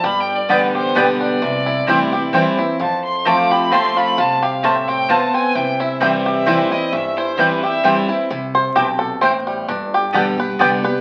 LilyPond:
<<
  \new Staff \with { instrumentName = "Fiddle" } { \time 3/4 \key c \major \tempo 4 = 131 \tuplet 3/2 { b''8 g''8 d''8 } b'8 c''8 b'8 d''8~ | d''2 r4 | a''8 c'''8 d'''8 b''8 c'''8 b''8 | a''8 f''8 e''8 g''8 a''8 aes''8 |
g''8 e''8 c''8 e''4 ees''8 | e''8 c''8 b'8 e''4 r8 | r2. | r2. | }
  \new Staff \with { instrumentName = "Mandolin" } { \time 3/4 \key c \major r4 <b g' d'' g''>8 r8 <b g' d'' g''>8 r8 | r4 <c' e' c'' g''>8 r8 <c' e' c'' g''>8 r8 | r4 <c' f' c'' a''>8 r8 <c' f' c'' a''>8 r8 | r4 <c' f' c'' a''>8 r8 <c' f' c'' a''>8 r8 |
r4 <c' e' c'' g''>8 r8 <c' e' c'' g''>8 r8 | r4 <c' e' c'' g''>8 r8 <c' e' c'' g''>8 r8 | r4 <c' e' c'' g''>8 r8 <c' e' c'' g''>8 r8 | r4 <b g' d'' g''>8 r8 <b g' d'' g''>8 r8 | }
  \new Staff \with { instrumentName = "Five-string banjo" } { \time 3/4 \key c \major << { r2. | r2. | r2. | r2. |
r2. | r2. | r8 c''8 g'8 a'8 c''4 | r8 g'8 a'8 b'8 d''8 b'8 | } \\ { g4 b8 g'8 b8 d'8 | e8 e'8 g8 g'8 c'8 e'8 | f4 a8 g'8 c'8 f'8 | f'8 g'8 a8 c'8 f'8 c'8 |
e8 e'8 g8 g'8 c'8 e'8 | e8 e'8 g8 g'8 c'8 e'8 | e'4. r4 g8 | d'4. r4. | } >> }
  \new Staff \with { instrumentName = "Steel-string acoustic guitar" } { \time 3/4 \key c \major << { r4 <d g b g'>4 <d g b g'>4 | r4 <e g c' e'>8 <c' e'>8 <e g c' e'>8 <c' e'>8 | r4 <f a c' f'>4 <f a c' f'>4 | r2. |
r4 <e g c' e'>4 <e g c' e'>8 <c' e'>8 | r4 <e g c' e'>8 <c' e'>8 <e g c' e'>8 <c' e'>8 | r2. | r4 <d g b g'>8 <b g'>8 <d g b g'>8 <b g'>8 | } \\ { g,2 r4 | c2 r4 | f,2 r4 | c4 a,4 b4 |
c2 r4 | g,2 r4 | c4 b,4 a,4 | g,2 r4 | } >> }
  \new Staff \with { instrumentName = "Upright bass" } { \clef bass \time 3/4 \key c \major g,,4 a,,4 b,,4 | c,4 d,4 e,4 | f,2. | c,2. |
c,2. | g,,2. | c,4 b,,4 a,,4 | g,,4 b,,4 c,4 | }
>>